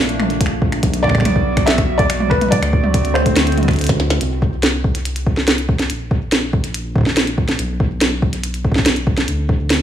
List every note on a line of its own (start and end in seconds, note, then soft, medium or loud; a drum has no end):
0.00 0.81 A#1 medium
0.00 0.81 A3 medium
0.00 0.81 A#3 medium
0.00 0.81 D4 medium
0.00 0.15 D5 medium
0.09 closed hi-hat soft
0.20 finger snap medium
0.20 mid tom medium
0.30 closed hi-hat soft
0.41 kick loud
0.41 closed hi-hat medium
0.46 finger snap medium
0.62 kick loud
0.72 finger snap medium
0.72 closed hi-hat soft
0.83 2.50 B1 medium
0.83 2.50 G3 medium
0.83 2.50 B3 medium
0.83 2.50 F#4 medium
0.83 kick loud
0.83 closed hi-hat medium
0.94 closed hi-hat medium
1.03 1.69 D5 loud
1.03 finger snap soft
1.03 kick medium
1.08 finger snap soft
1.08 kick medium
1.11 kick medium
1.15 finger snap medium
1.15 kick medium
1.18 finger snap medium
1.18 kick medium
1.22 finger snap medium
1.22 kick loud
1.22 closed hi-hat medium
1.22 mid tom loud
1.36 kick loud
1.57 finger snap medium
1.57 kick loud
1.57 closed hi-hat medium
1.66 1.99 E5 loud
1.66 snare loud
1.66 closed hi-hat medium
1.78 finger snap medium
1.78 kick loud
1.78 closed hi-hat soft
1.98 2.28 D5 loud
1.98 kick loud
1.98 closed hi-hat soft
2.10 finger snap medium
2.10 closed hi-hat medium
2.20 mid tom medium
2.30 2.52 B4 medium
2.30 finger snap medium
2.30 kick loud
2.41 closed hi-hat soft
2.41 mid tom medium
2.48 4.19 D2 medium
2.48 4.19 D3 medium
2.48 4.19 A3 medium
2.48 4.19 C4 medium
2.48 4.19 F#4 loud
2.48 3.17 D5 loud
2.48 kick loud
2.48 closed hi-hat medium
2.48 mid tom medium
2.55 mid tom medium
2.63 finger snap medium
2.63 closed hi-hat medium
2.73 kick loud
2.84 mid tom loud
2.94 kick loud
2.94 closed hi-hat medium
3.05 closed hi-hat soft
3.14 3.54 C5 medium
3.14 finger snap medium
3.26 kick loud
3.26 closed hi-hat medium
3.36 finger snap medium
3.36 snare loud
3.36 closed hi-hat medium
3.47 closed hi-hat soft
3.52 closed hi-hat soft
3.58 closed hi-hat soft
3.58 mid tom medium
3.61 closed hi-hat soft
3.61 mid tom medium
3.65 finger snap medium
3.65 kick loud
3.65 closed hi-hat soft
3.65 mid tom medium
3.68 closed hi-hat soft
3.68 mid tom soft
3.72 closed hi-hat soft
3.72 mid tom soft
3.75 closed hi-hat soft
3.75 mid tom soft
3.79 closed hi-hat soft
3.81 closed hi-hat soft
3.84 closed hi-hat medium
3.87 kick loud
3.87 snare medium
3.87 closed hi-hat medium
4.00 snare medium
4.10 snare medium
4.10 closed hi-hat soft
4.21 5.88 C2 medium
4.21 closed hi-hat medium
4.42 kick loud
4.63 snare loud
4.63 closed hi-hat medium
4.84 kick loud
4.95 closed hi-hat medium
5.05 closed hi-hat medium
5.16 closed hi-hat medium
5.27 kick loud
5.37 snare medium
5.48 snare loud
5.48 closed hi-hat medium
5.58 closed hi-hat soft
5.69 kick loud
5.79 snare medium
5.79 closed hi-hat soft
5.90 7.57 A#1 medium
5.90 closed hi-hat medium
6.11 kick loud
6.32 snare loud
6.32 closed hi-hat medium
6.53 kick loud
6.64 closed hi-hat medium
6.74 closed hi-hat medium
6.96 kick loud
6.98 kick medium
7.01 kick medium
7.03 kick medium
7.03 snare medium
7.17 snare loud
7.17 closed hi-hat medium
7.27 closed hi-hat soft
7.38 kick loud
7.48 snare medium
7.48 closed hi-hat soft
7.59 9.26 B1 medium
7.59 closed hi-hat medium
7.80 kick loud
8.01 snare loud
8.01 closed hi-hat medium
8.22 kick loud
8.33 closed hi-hat medium
8.44 closed hi-hat medium
8.54 closed hi-hat medium
8.65 kick loud
8.72 kick medium
8.72 snare medium
8.79 kick medium
8.86 snare loud
8.86 closed hi-hat medium
8.96 closed hi-hat soft
9.07 kick loud
9.17 snare medium
9.17 closed hi-hat soft
9.28 9.82 D2 medium
9.28 closed hi-hat medium
9.49 kick loud
9.70 snare loud
9.70 closed hi-hat medium